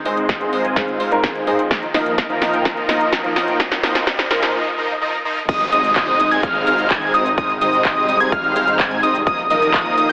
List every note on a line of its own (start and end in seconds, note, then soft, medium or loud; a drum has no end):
0.00 1.67 G#3 medium
0.00 1.69 F4 medium
0.00 1.67 C5 medium
0.00 riser medium
0.05 0.24 G#2 medium
0.05 0.25 D#3 medium
0.05 0.25 G#3 medium
0.05 0.26 G#3 medium
0.05 0.26 C4 medium
0.05 0.25 C4 medium
0.05 0.26 D#4 medium
0.05 0.25 G#4 medium
0.05 0.26 C5 medium
0.05 0.26 D#5 loud
0.05 open hi-hat loud
0.17 closed hi-hat soft
0.29 0.50 G#3 medium
0.29 0.50 C4 medium
0.29 0.50 D#4 medium
0.29 0.50 C5 medium
0.29 0.50 D#5 medium
0.29 kick loud
0.29 snare medium
0.29 closed hi-hat soft
0.40 0.73 G#2 medium
0.40 0.73 D#3 medium
0.40 0.73 G#3 medium
0.40 0.74 C4 medium
0.40 0.74 G#4 medium
0.40 closed hi-hat soft
0.53 0.63 G#3 medium
0.53 0.63 C4 medium
0.53 0.63 D#4 medium
0.53 0.63 C5 medium
0.53 0.63 D#5 medium
0.53 open hi-hat medium
0.64 0.74 G#3 medium
0.64 0.74 C4 medium
0.64 0.74 D#4 medium
0.64 0.74 C5 medium
0.64 0.74 G#5 loud
0.64 closed hi-hat soft
0.75 0.88 G#2 medium
0.75 0.88 D#3 medium
0.75 0.88 G#3 medium
0.75 0.97 G#3 medium
0.75 0.97 C4 medium
0.75 0.88 C4 medium
0.75 0.97 D#4 medium
0.75 0.89 G#4 medium
0.75 0.97 C5 medium
0.75 0.97 F5 medium
0.75 kick loud
0.75 snare medium
0.75 closed hi-hat soft
0.88 closed hi-hat soft
1.00 1.21 G#3 medium
1.00 1.21 C4 medium
1.00 1.21 D#4 medium
1.00 1.21 C5 medium
1.00 1.21 F5 loud
1.00 open hi-hat loud
1.11 1.23 G#2 loud
1.11 1.24 D#3 medium
1.11 1.24 G#3 medium
1.11 1.24 C4 medium
1.11 1.24 A#4 loud
1.11 closed hi-hat medium
1.24 1.44 G#3 medium
1.24 1.44 C4 medium
1.24 1.44 D#4 medium
1.24 1.44 C5 medium
1.24 1.44 G#5 medium
1.24 kick loud
1.24 snare medium
1.24 closed hi-hat soft
1.35 closed hi-hat soft
1.46 1.59 D#3 medium
1.46 1.59 G#3 medium
1.46 1.61 G#3 medium
1.46 1.61 C4 medium
1.46 1.59 C4 medium
1.46 1.61 D#4 medium
1.46 1.59 G#4 loud
1.46 1.61 C5 medium
1.46 1.61 D#5 medium
1.46 open hi-hat medium
1.59 closed hi-hat medium
1.71 1.85 F3 medium
1.71 4.51 F3 medium
1.71 1.85 A#3 medium
1.71 1.85 D#4 medium
1.71 4.51 D#4 medium
1.71 1.85 A#4 medium
1.71 3.58 A#4 medium
1.71 1.85 D#5 medium
1.71 kick loud
1.71 snare medium
1.71 closed hi-hat soft
1.83 closed hi-hat soft
1.94 2.13 D#3 medium
1.94 2.14 F3 medium
1.94 2.15 F3 medium
1.94 2.15 A#3 medium
1.94 2.14 A#3 medium
1.94 2.15 D#4 medium
1.94 2.14 F4 medium
1.94 2.15 A#4 medium
1.94 2.15 D#5 loud
1.94 snare medium
1.94 open hi-hat loud
2.06 closed hi-hat medium
2.18 2.39 F3 medium
2.18 2.39 A#3 medium
2.18 2.39 D#4 medium
2.18 2.39 A#4 medium
2.18 2.39 D#5 medium
2.18 kick loud
2.18 snare medium
2.18 closed hi-hat soft
2.29 2.62 D#3 medium
2.29 2.62 F3 medium
2.29 2.62 A#3 medium
2.29 2.63 F4 medium
2.29 closed hi-hat soft
2.42 2.52 F3 medium
2.42 2.52 A#3 medium
2.42 2.52 D#4 medium
2.42 2.52 A#4 medium
2.42 2.52 D#5 medium
2.42 snare medium
2.42 open hi-hat medium
2.53 2.63 F3 medium
2.53 2.63 A#3 medium
2.53 2.63 D#4 medium
2.53 2.63 A#4 medium
2.53 2.63 G5 loud
2.53 closed hi-hat medium
2.65 2.80 F3 medium
2.65 2.80 A#3 medium
2.65 2.80 D#4 medium
2.65 2.80 A#4 medium
2.65 2.80 D#5 medium
2.65 kick loud
2.65 snare medium
2.65 closed hi-hat soft
2.77 closed hi-hat soft
2.88 3.08 D#3 medium
2.88 3.08 F3 medium
2.88 3.10 F3 medium
2.88 3.10 A#3 medium
2.88 3.08 A#3 medium
2.88 3.10 D#4 medium
2.88 3.08 F4 medium
2.88 3.10 A#4 medium
2.88 3.10 D#5 loud
2.88 snare medium
2.88 open hi-hat loud
3.01 closed hi-hat medium
3.13 3.33 F3 medium
3.13 3.33 A#3 medium
3.13 3.33 D#4 medium
3.13 3.33 A#4 medium
3.13 3.33 D#5 medium
3.13 kick loud
3.13 snare medium
3.13 closed hi-hat medium
3.24 3.57 D#3 medium
3.24 3.57 F3 medium
3.24 3.57 A#3 medium
3.24 3.57 F4 medium
3.24 closed hi-hat soft
3.36 3.46 F3 medium
3.36 3.46 A#3 medium
3.36 3.46 D#4 medium
3.36 3.46 A#4 medium
3.36 3.46 D#5 medium
3.36 snare medium
3.36 open hi-hat medium
3.48 3.58 F3 medium
3.48 3.58 A#3 medium
3.48 3.58 D#4 medium
3.48 3.58 A#4 medium
3.48 3.58 G5 loud
3.48 closed hi-hat medium
3.60 3.74 F3 medium
3.60 3.74 A#3 medium
3.60 3.74 D#4 medium
3.60 3.74 A#4 medium
3.60 4.53 C5 medium
3.60 3.74 D#5 medium
3.60 kick loud
3.60 snare medium
3.60 closed hi-hat medium
3.72 snare medium
3.72 closed hi-hat soft
3.83 4.02 D#3 medium
3.83 4.03 F3 medium
3.83 4.04 F3 loud
3.83 4.04 A#3 medium
3.83 4.03 A#3 medium
3.83 4.04 D#4 medium
3.83 4.03 F4 medium
3.83 4.04 A#4 medium
3.83 4.04 D#5 loud
3.83 snare loud
3.83 open hi-hat loud
3.95 snare medium
3.95 closed hi-hat soft
4.07 4.21 F3 medium
4.07 4.21 A#3 medium
4.07 4.21 D#4 medium
4.07 4.21 A#4 medium
4.07 4.21 D#5 loud
4.07 kick loud
4.07 snare medium
4.07 closed hi-hat medium
4.19 snare medium
4.19 closed hi-hat soft
4.30 4.50 D#3 medium
4.30 4.50 F3 medium
4.30 4.51 F3 medium
4.30 4.51 A#3 medium
4.30 4.50 A#3 medium
4.30 4.51 D#4 medium
4.30 4.50 F4 medium
4.30 4.51 A#4 medium
4.30 4.51 D#5 loud
4.30 snare loud
4.30 open hi-hat medium
4.42 snare medium
4.42 closed hi-hat medium
4.54 4.69 F3 medium
4.54 4.69 A#3 medium
4.54 4.69 D#4 medium
4.54 4.69 A#4 medium
4.54 4.69 D#5 loud
4.78 4.92 F3 medium
4.78 4.92 A#3 medium
4.78 4.92 D#4 medium
4.78 4.92 A#4 medium
4.78 4.92 D#5 loud
5.01 5.16 F3 medium
5.01 5.16 A#3 medium
5.01 5.16 D#4 medium
5.01 5.16 A#4 medium
5.01 5.16 D#5 loud
5.25 5.39 F3 medium
5.25 5.39 A#3 medium
5.25 5.39 D#4 medium
5.25 5.39 A#4 medium
5.25 5.39 D#5 loud
5.49 5.70 G#1 medium
5.49 9.23 C3 medium
5.49 7.36 G#3 medium
5.49 5.63 G#3 medium
5.49 5.63 C4 medium
5.49 9.23 D#4 medium
5.49 5.63 D#4 medium
5.49 5.63 C5 medium
5.49 5.63 D#5 medium
5.49 5.63 D#6 medium
5.49 kick loud
5.49 closed hi-hat medium
5.49 crash loud
5.49 downlifter medium
5.49 cabasa soft
5.61 closed hi-hat soft
5.72 5.94 G#1 loud
5.72 5.93 G#3 loud
5.72 5.93 C4 medium
5.72 5.93 D#4 medium
5.72 5.93 C5 medium
5.72 5.93 D#5 loud
5.72 5.93 D#6 loud
5.72 open hi-hat loud
5.72 cabasa medium
5.84 closed hi-hat medium
5.84 cabasa soft
5.96 6.17 G#1 medium
5.96 6.17 G#3 medium
5.96 6.17 C4 medium
5.96 6.17 D#4 medium
5.96 6.17 C5 medium
5.96 6.17 D#5 loud
5.96 6.17 D#6 loud
5.96 kick loud
5.96 clap loud
5.96 closed hi-hat medium
5.96 cabasa soft
6.08 closed hi-hat soft
6.20 6.29 G#1 medium
6.20 6.30 G#3 medium
6.20 6.30 C4 medium
6.20 6.30 D#4 medium
6.20 6.30 C5 medium
6.20 6.30 D#5 loud
6.20 6.30 D#6 loud
6.20 open hi-hat medium
6.20 cabasa medium
6.31 6.41 G#1 medium
6.31 6.41 G#3 medium
6.31 6.41 C4 medium
6.31 6.41 D#4 medium
6.31 6.41 C5 loud
6.31 6.41 G#5 loud
6.31 6.41 G#6 loud
6.31 closed hi-hat medium
6.31 cabasa soft
6.43 6.65 G#1 medium
6.43 6.64 G#3 medium
6.43 6.64 C4 medium
6.43 6.64 D#4 medium
6.43 6.64 C5 medium
6.43 6.64 F5 medium
6.43 6.64 F6 medium
6.43 kick loud
6.43 closed hi-hat medium
6.43 cabasa soft
6.55 closed hi-hat soft
6.67 6.88 G#1 loud
6.67 6.88 G#3 loud
6.67 6.88 C4 medium
6.67 6.88 D#4 medium
6.67 6.88 C5 medium
6.67 6.88 F5 loud
6.67 6.88 F6 loud
6.67 open hi-hat loud
6.67 cabasa medium
6.79 closed hi-hat medium
6.79 cabasa soft
6.90 7.12 G#1 loud
6.90 7.11 G#3 medium
6.90 7.11 C4 medium
6.90 7.11 D#4 medium
6.90 7.11 C5 medium
6.90 7.11 G#5 medium
6.90 7.11 G#6 medium
6.90 kick loud
6.90 clap loud
6.90 closed hi-hat medium
6.90 cabasa soft
7.02 closed hi-hat soft
7.14 7.35 G#1 medium
7.14 7.28 G#3 medium
7.14 7.28 C4 medium
7.14 7.28 D#4 medium
7.14 7.28 C5 medium
7.14 7.28 D#5 medium
7.14 7.28 D#6 medium
7.14 open hi-hat medium
7.14 cabasa medium
7.26 closed hi-hat medium
7.26 cabasa soft
7.38 7.59 G#1 loud
7.38 9.25 G3 medium
7.38 7.52 G#3 medium
7.38 7.52 C4 medium
7.38 7.52 D#4 medium
7.38 7.52 C5 medium
7.38 7.52 D#5 loud
7.38 7.52 D#6 loud
7.38 kick loud
7.38 closed hi-hat medium
7.38 cabasa soft
7.50 closed hi-hat soft
7.61 7.83 G#1 loud
7.61 7.82 G#3 loud
7.61 7.82 C4 medium
7.61 7.82 D#4 medium
7.61 7.82 C5 medium
7.61 7.82 D#5 loud
7.61 7.82 D#6 loud
7.61 open hi-hat loud
7.61 cabasa medium
7.73 closed hi-hat medium
7.73 cabasa soft
7.85 8.06 G#1 loud
7.85 8.06 G#3 medium
7.85 8.06 C4 medium
7.85 8.06 D#4 medium
7.85 8.06 C5 medium
7.85 8.06 D#5 loud
7.85 8.06 D#6 medium
7.85 kick loud
7.85 clap loud
7.85 closed hi-hat medium
7.85 cabasa soft
7.97 closed hi-hat soft
8.09 8.18 G#1 loud
8.09 8.19 G#3 medium
8.09 8.19 C4 medium
8.09 8.19 D#4 medium
8.09 8.19 C5 medium
8.09 8.19 D#5 medium
8.09 8.19 D#6 loud
8.09 open hi-hat medium
8.09 cabasa medium
8.20 8.30 G#1 medium
8.20 8.30 G#3 loud
8.20 8.30 C4 medium
8.20 8.30 D#4 medium
8.20 8.30 C5 medium
8.20 8.30 G#5 loud
8.20 8.30 G#6 loud
8.20 closed hi-hat medium
8.20 cabasa soft
8.32 8.53 G#1 medium
8.32 8.53 G#3 medium
8.32 8.53 C4 medium
8.32 8.53 D#4 medium
8.32 8.53 C5 medium
8.32 8.53 F5 medium
8.32 8.53 F6 medium
8.32 kick loud
8.32 closed hi-hat medium
8.32 cabasa soft
8.44 closed hi-hat soft
8.56 8.77 G#1 loud
8.56 8.77 G#3 medium
8.56 8.77 C4 medium
8.56 8.77 D#4 medium
8.56 8.77 C5 medium
8.56 8.77 F5 loud
8.56 8.77 F6 loud
8.56 open hi-hat loud
8.56 cabasa medium
8.68 closed hi-hat medium
8.68 cabasa soft
8.79 9.01 G#2 loud
8.79 9.00 G#3 medium
8.79 9.00 C4 medium
8.79 9.00 D#4 medium
8.79 9.00 C5 medium
8.79 9.00 G#5 medium
8.79 9.00 G#6 medium
8.79 kick loud
8.79 clap loud
8.79 closed hi-hat medium
8.79 cabasa soft
8.91 closed hi-hat soft
9.03 9.24 G#1 loud
9.03 9.17 G#3 medium
9.03 9.17 C4 medium
9.03 9.17 D#4 medium
9.03 9.17 C5 medium
9.03 9.17 D#5 medium
9.03 9.17 D#6 medium
9.03 open hi-hat loud
9.03 cabasa medium
9.15 closed hi-hat medium
9.15 cabasa soft
9.27 9.48 D#1 loud
9.27 10.12 D#3 medium
9.27 9.41 F3 medium
9.27 9.41 A#3 medium
9.27 10.12 A#3 medium
9.27 9.41 D#4 medium
9.27 10.12 F4 medium
9.27 9.41 A#4 medium
9.27 9.41 D#5 medium
9.27 9.41 D#6 loud
9.27 kick loud
9.27 closed hi-hat medium
9.27 cabasa soft
9.39 closed hi-hat soft
9.50 9.72 D#1 loud
9.50 9.71 F3 loud
9.50 9.71 A#3 medium
9.50 9.71 D#4 medium
9.50 9.71 A#4 medium
9.50 9.71 D#5 loud
9.50 9.71 D#6 loud
9.50 open hi-hat loud
9.50 cabasa medium
9.62 closed hi-hat medium
9.62 cabasa soft
9.74 9.95 D#1 loud
9.74 9.95 F3 medium
9.74 9.95 A#3 medium
9.74 9.95 D#4 medium
9.74 9.95 A#4 medium
9.74 9.95 D#5 loud
9.74 9.95 D#6 loud
9.74 kick loud
9.74 clap loud
9.74 closed hi-hat soft
9.74 cabasa soft
9.86 closed hi-hat soft
9.97 10.07 D#1 medium
9.97 10.08 F3 medium
9.97 10.08 A#3 medium
9.97 10.08 D#4 medium
9.97 10.08 A#4 medium
9.97 10.08 D#5 medium
9.97 10.08 D#6 loud
9.97 open hi-hat medium
9.97 cabasa medium